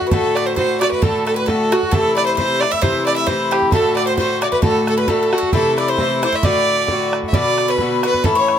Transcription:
Already playing: bouzouki D3 A3 F#4, fiddle F#4
0.02 bodhran
0.07 mandolin B4
0.11 bouzouki A2 D3 A3 F#4, fiddle A4, mandolin A4, bodhran
0.35 fiddle D5, mandolin D5, bodhran
0.46 fiddle C5, mandolin C5
0.56 bouzouki A2 D3 A3 F#4, mandolin C5, fiddle C5, bodhran
0.81 bouzouki D3 A3 F#4, mandolin D5, fiddle D5, bodhran
0.91 fiddle B4, bodhran
1.02 bouzouki A2 D3 A3 F#4, mandolin A4, fiddle A4, bodhran
1.26 mandolin A4, fiddle A4, bodhran
1.36 fiddle B4, mandolin B4
1.46 bouzouki A2 D3 A3 F#4, mandolin A4, fiddle A4, bodhran
1.72 bouzouki D3 A3 F#4, mandolin F#4, fiddle F#4, bodhran
1.83 bodhran
1.91 bouzouki C3 E3 A3 E4, mandolin A4, fiddle A4, bodhran
2.17 mandolin D5, fiddle D5, bodhran
2.26 fiddle C5, mandolin C5
2.37 bouzouki C3 E3 A3 E4, fiddle C5, mandolin C5, bodhran
2.60 bouzouki A3 E4, fiddle D5, bodhran
2.65 bouzouki E3
2.71 fiddle E5, mandolin E5, bodhran
2.82 bouzouki C3 E3 A3 E4, mandolin C5, fiddle C5, bodhran
3.06 fiddle D5, mandolin D5, bodhran
3.16 mandolin E5, fiddle E5
3.27 bouzouki C3 E3 A3, mandolin C5, fiddle C5, bodhran
3.31 bouzouki E4
3.51 mandolin G4, fiddle G4, bodhran
3.62 bodhran
3.72 bouzouki A2 D3 A3 F#4, mandolin A4, fiddle A4, tin whistle B5, bodhran
3.77 tin whistle A5
3.96 fiddle D5, mandolin D5, tin whistle D6, bodhran
4.07 mandolin C5, fiddle C5, tin whistle C6
4.17 bouzouki A2 D3 A3 F#4, fiddle C5, mandolin C5, tin whistle C6, bodhran
4.42 bouzouki D3 A3 F#4, mandolin D5, fiddle D5, tin whistle D6, bodhran
4.52 mandolin B4, fiddle B4, bodhran
4.62 bouzouki A2 D3 A3 F#4, mandolin A4, fiddle A4, tin whistle A5, bodhran
4.87 mandolin A4, fiddle A4, bodhran
4.98 mandolin B4, fiddle B4, tin whistle B5
5.08 bouzouki A2 D3 A3 F#4, mandolin A4, fiddle A4, tin whistle B5, bodhran
5.13 tin whistle A5
5.23 mandolin A4
5.32 bouzouki D3 A3 F#4, fiddle F#4, bodhran
5.38 mandolin A4
5.43 bodhran
5.53 bouzouki C3 E3 A3 E4, mandolin A4, fiddle A4, tin whistle A5, bodhran
5.78 mandolin D5, fiddle D5, tin whistle D6, bodhran
5.88 mandolin C5, fiddle C5, tin whistle C6
5.98 bouzouki C3 E3 A3 E4, bodhran
6.23 bouzouki E3 A3 E4, mandolin C5, fiddle C5, tin whistle D6, bodhran
6.27 tin whistle C6
6.32 mandolin E5, fiddle E5, bodhran
6.43 bouzouki A2 D3 A3 F#4, mandolin D5, fiddle D5, tin whistle D6, bodhran
6.88 bouzouki A2 D3 A3 F#4, bodhran
7.13 bodhran
7.23 bodhran
7.28 fiddle E5
7.33 bouzouki B2 D3 B3 F#4, mandolin D5, fiddle D5, tin whistle D6, bodhran
7.58 bodhran
7.68 mandolin B4, fiddle B4, tin whistle C#6
7.73 tin whistle B5
7.78 bouzouki B2 D3 B3, bodhran
7.82 bouzouki F#4
8.03 bouzouki D3 B3 F#4, mandolin B4, fiddle B4, tin whistle C#6, bodhran
8.08 tin whistle B5
8.14 bodhran
8.24 bouzouki A2 E3 C#4 E4, mandolin A4, fiddle A4, tin whistle A5, bodhran
8.35 mandolin C#5, fiddle C#5, tin whistle C#6
8.48 bodhran

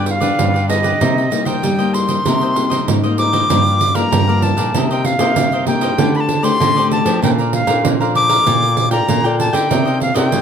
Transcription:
Already playing: nylon-string guitar G2 G3 B3 D4
0.06 flute G5, muted cavaquinho stroke, pandeiro
0.11 flute F5
0.20 nylon-string guitar G3 B3 D4, cavaquinho G4 B4 D5, pandeiro
0.39 nylon-string guitar G2 D3, pandeiro
0.54 cavaquinho G4 B4 D5, pandeiro
0.68 nylon-string guitar G3 B3 D4, cavaquinho D4 G4 B4 D5, flute D#5, pandeiro
0.83 cavaquinho G4 B4 D5, pandeiro
1.00 nylon-string guitar C3 G3 A#3 D#4, cavaquinho D#4 A#4 C5 D#5, pandeiro
1.18 pandeiro
1.30 nylon-string guitar G3 A#3 D#4, muted cavaquinho stroke, pandeiro
1.45 cavaquinho A#4 C5 D#5, flute G5, pandeiro
1.62 nylon-string guitar G2 G3, cavaquinho D#4 A#4 C5 D#5, pandeiro
1.79 nylon-string guitar G3 A#3 D#4, cavaquinho A#4 C5 D#5, pandeiro
1.94 flute C6, pandeiro
2.08 cavaquinho A#4 C5 D#5, pandeiro
2.25 nylon-string guitar C3 G3 A#3 D#4, cavaquinho D#4 A#4 C5 D#5, pandeiro
2.41 cavaquinho A#4 C5 D#5, pandeiro
2.56 nylon-string guitar G3 A#3 D#4, muted cavaquinho stroke, pandeiro
2.70 cavaquinho A#4 C5 D#5, pandeiro
2.88 nylon-string guitar G#2, pandeiro
3.03 nylon-string guitar G3 A#3 D#4, cavaquinho A#4 C5 D#5, pandeiro
3.18 cavaquinho D#4 A#4 C5 D#5, flute D6, pandeiro
3.33 cavaquinho A#4 C5 D#5, pandeiro
3.50 nylon-string guitar G2 F3 A#3 D4, cavaquinho G4 A#4 D5 F5, pandeiro
3.67 pandeiro
3.80 muted cavaquinho stroke, pandeiro
3.94 nylon-string guitar F3 A#3 D4, cavaquinho A#4 D5 F5, flute A#5, pandeiro
4.11 nylon-string guitar G2 D3, cavaquinho G4 A#4 D5 F5, pandeiro
4.28 nylon-string guitar F3 A#3 D4, cavaquinho A#4 D5 F5, pandeiro
4.42 flute A5, pandeiro
4.57 nylon-string guitar A#2, cavaquinho A#4 D5 F5, pandeiro
4.74 nylon-string guitar C3 A#3 D#4 G4, cavaquinho D#4 A#4 C5 D#5, pandeiro
4.91 cavaquinho A#4 C5 D#5, flute G5, pandeiro
5.05 flute F5, muted cavaquinho stroke, pandeiro
5.19 nylon-string guitar C3 A#3 D#4 G4, cavaquinho A#4 C5 D#5, pandeiro
5.36 nylon-string guitar G2 C3, pandeiro
5.52 cavaquinho A#4 C5 D#5, pandeiro
5.67 nylon-string guitar A#3 D#4 G4, cavaquinho D#4 A#4 C5 D#5, flute G5, pandeiro
5.81 cavaquinho A#4 C5 D#5, pandeiro
5.98 nylon-string guitar D3 A3 C4 G4, cavaquinho D4 G4 C5 D5, pandeiro
6.15 flute B5, pandeiro
6.20 flute A5
6.29 muted cavaquinho stroke, pandeiro
6.43 nylon-string guitar A3 C4 G4, cavaquinho G4 C5 D5, flute C6, pandeiro
6.60 nylon-string guitar A2 D3, cavaquinho D4 G4 C5 D5, pandeiro
6.76 nylon-string guitar A3 C4 G4, cavaquinho G4 C5 D5, pandeiro
6.91 flute A5, pandeiro
7.05 nylon-string guitar F3 D4 A4 C5, cavaquinho G4 C5 D5, pandeiro
7.22 nylon-string guitar A#2 A#3, cavaquinho A4 D5 F5 A#5, flute G5, pandeiro
7.38 cavaquinho D5 F5 A#5, pandeiro
7.53 flute F5, muted cavaquinho stroke, pandeiro
7.67 nylon-string guitar A#2 D4 A4 C5, cavaquinho D5 F5 A#5, pandeiro
7.85 nylon-string guitar A#2 F3, pandeiro
8.00 nylon-string guitar D4 A4 C5, cavaquinho D5 F5 A#5, pandeiro
8.15 cavaquinho A4 D5 F5 A#5, flute D6, pandeiro
8.30 cavaquinho D5 F5 A#5, pandeiro
8.46 nylon-string guitar A#2 A#3 F4 A4 D5, cavaquinho F4 A#4 D5 G5, pandeiro
8.62 pandeiro
8.77 muted cavaquinho stroke, pandeiro
8.91 nylon-string guitar F4 A4 D5, cavaquinho A#4 D5 G5, flute A#5, pandeiro
9.08 nylon-string guitar A#2 A#3, cavaquinho F4 A#4 D5 G5, pandeiro
9.24 nylon-string guitar F4 A4 D5, cavaquinho A#4 D5 G5, pandeiro
9.40 flute A5, pandeiro
9.53 nylon-string guitar D3, cavaquinho A#4 D5 G5, flute G5, pandeiro
9.69 nylon-string guitar C3 C4 D#4 A#4 D5, cavaquinho D#4 A#4 C5 D#5, pandeiro
9.85 cavaquinho A#4 C5 D#5, pandeiro
10.00 flute F5, muted cavaquinho stroke, pandeiro
10.14 nylon-string guitar C3 D#4 A#4 D5, cavaquinho A#4 C5 D#5, flute G5, pandeiro
10.32 nylon-string guitar C#3 G3, pandeiro

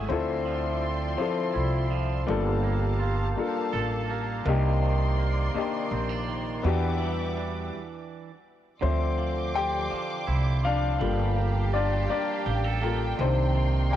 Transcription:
Already playing: grand piano G#3 A3 C#4 E4 G#4, clean electric guitar A3 E4 G#4, string section E5
0.08 upright bass D2, clean electric guitar D3, string section F3 D5 C6, grand piano C4 E4 F4
0.12 grand piano A4
0.45 clean electric guitar F3
0.81 clean electric guitar C4
1.17 clean electric guitar F3, grand piano F3 C4 E4 A4
1.54 upright bass C2, clean electric guitar E4
1.91 clean electric guitar F3
2.27 upright bass G1, clean electric guitar G3, grand piano A#3 D4 F4 A4, string section A#3 G4 F5 A5
2.63 clean electric guitar A#3
2.99 clean electric guitar F4
3.36 clean electric guitar A#3, grand piano A#3 D4 F4 A4, muted upright bass stroke
3.73 upright bass A1, clean electric guitar A4
4.10 clean electric guitar A#3
4.45 upright bass C2, clean electric guitar C3, grand piano A#3 D4 D#4 G4, string section C5 D5 C6
4.82 clean electric guitar D#3
5.18 clean electric guitar A#3
5.54 clean electric guitar D#3, grand piano A#3 D4 D#4 G4
5.91 upright bass A#1, clean electric guitar C4
6.09 clean electric guitar D4
6.28 clean electric guitar D#3
6.63 upright bass E2, clean electric guitar E3, string section G3 E5 F#5 D6, grand piano B3 D4 F#4
6.67 grand piano G4
7.00 clean electric guitar G3
7.37 clean electric guitar D4
8.81 upright bass D2, clean electric guitar D3, string section F3 D5 C6 D6, grand piano F3 C4 C5 E5
9.18 clean electric guitar F3
9.54 clean electric guitar C4, grand piano G4 G5
9.90 clean electric guitar F3, muted upright bass stroke
10.27 upright bass C2, clean electric guitar E4
10.64 clean electric guitar F3, grand piano D4 F5
11.00 upright bass G1, clean electric guitar G3, grand piano A#3 F4 A4, string section G4 F5 G5 A5
11.36 clean electric guitar A#3
11.73 grand piano D4 D5, clean electric guitar F4
12.10 clean electric guitar A#3, grand piano D4 D5, muted upright bass stroke
12.46 upright bass A1, clean electric guitar G4
12.64 clean electric guitar A4
12.82 clean electric guitar A#3, grand piano A#3 F4 A4
13.18 upright bass C2, clean electric guitar C3, string section D#3 D5 C6, grand piano D#3 A#3 C4 D4 C5
13.55 clean electric guitar D#3
13.91 clean electric guitar A#3, grand piano G5

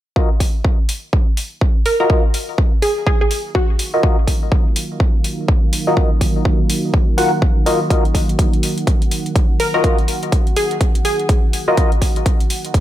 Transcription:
0.16 analog synth pad D#4 F#4 A#4 F5, synth stab F4 F#4 A#4 D#5, kick
0.40 kick, open hi-hat
0.65 kick
0.89 open hi-hat
1.13 kick
1.37 open hi-hat
1.61 kick
1.86 synth pluck A#4, open hi-hat
2.00 synth stab F4 F#4 A#4 D#5, synth pluck A#4
2.10 synth stab F4 F#4, kick
2.34 open hi-hat
2.58 kick
2.82 synth pluck G#4, open hi-hat
3.07 synth pluck G#4, kick
3.21 synth pluck G#4
3.31 open hi-hat
3.55 synth pluck F#4, kick
3.79 open hi-hat
3.94 synth stab F4 F#4 A#4 D#5
4.03 synth stab F4 F#4 A#4 D#5, kick
4.27 kick, open hi-hat
4.52 kick
4.76 open hi-hat
5.00 kick
5.24 open hi-hat
5.48 kick
5.73 open hi-hat
5.87 synth stab F4 F#4 A#4 D#5
5.97 synth stab F4 F#4 D#5, kick
6.21 kick, open hi-hat
6.45 kick
6.70 open hi-hat
6.94 kick
7.18 synth stab F4 F#4 A#4 F#5, open hi-hat
7.42 kick
7.66 synth stab F4 F#4 A#4 D#5, open hi-hat
7.90 synth stab F4 F#4 A#4 D#5, analog synth pad F#5, kick, closed hi-hat
8.05 closed hi-hat
8.15 kick, open hi-hat
8.29 closed hi-hat
8.39 kick, closed hi-hat
8.53 closed hi-hat
8.63 open hi-hat
8.78 closed hi-hat
8.87 kick, closed hi-hat
9.02 closed hi-hat
9.11 open hi-hat
9.26 closed hi-hat
9.36 kick, closed hi-hat
9.60 synth pluck A#4, open hi-hat
9.74 synth stab F4 F#4 A#4 D#5, synth pluck A#4
9.84 synth stab F4 F#4 A#4 D#5, kick, closed hi-hat
9.98 closed hi-hat
10.08 open hi-hat
10.23 closed hi-hat
10.32 kick, closed hi-hat
10.47 closed hi-hat
10.56 synth pluck G#4, open hi-hat
10.71 closed hi-hat
10.81 kick, closed hi-hat
10.95 closed hi-hat
11.05 synth pluck G#4, open hi-hat
11.19 closed hi-hat
11.29 kick, closed hi-hat
11.53 open hi-hat
11.68 synth stab F4 F#4 A#4 D#5
11.77 synth stab F4 F#4 A#4 D#5, kick, closed hi-hat
11.92 closed hi-hat
12.02 kick, open hi-hat
12.16 closed hi-hat
12.26 kick, closed hi-hat
12.40 closed hi-hat
12.50 open hi-hat
12.65 closed hi-hat
12.74 kick, closed hi-hat

